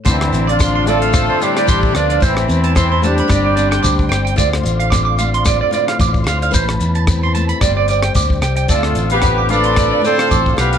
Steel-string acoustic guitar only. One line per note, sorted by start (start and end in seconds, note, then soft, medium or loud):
0.00 1.13 A2 medium
0.05 2.21 D3 medium
0.05 0.33 C4 medium
0.33 0.59 C4 medium
0.60 1.13 C4 medium
0.86 2.19 A3 medium
1.14 2.21 C4 medium
1.40 1.67 A2 medium
1.68 1.94 C3 medium
1.94 2.20 B2 medium
2.20 3.29 A2 medium
2.20 2.48 C4 medium
2.48 2.75 C4 medium
2.75 3.28 C4 medium
3.02 3.27 A3 medium
3.28 4.36 G3 medium
3.28 3.56 C4 medium
3.57 3.82 C4 medium
3.83 4.09 C4 medium
4.09 4.37 C4 medium
4.36 6.53 D3 medium
4.36 5.18 A3 medium
4.36 4.91 C4 medium
4.36 4.62 F4 medium
4.36 6.24 C5 medium
4.63 5.45 F4 medium
4.92 7.08 C4 medium
5.19 6.51 A3 medium
5.47 6.51 F4 medium
5.71 6.50 A2 medium
6.24 6.51 C5 medium
6.51 7.60 A2 medium
6.51 7.57 B4 medium
6.80 7.61 E4 medium
7.08 8.41 C4 medium
7.35 7.59 A3 medium
7.62 8.69 G3 medium
7.62 7.89 C5 medium
7.89 8.71 C5 medium
8.15 8.66 G4 medium
8.41 8.70 C4 medium
8.68 10.78 D3 medium
8.68 9.48 A3 medium
8.68 9.21 C4 medium
8.68 8.95 F4 medium
8.96 9.75 F4 medium
9.21 10.78 C4 medium
9.49 10.78 A3 medium
9.76 10.78 F4 medium
10.02 10.78 A2 medium
10.57 10.78 A4 medium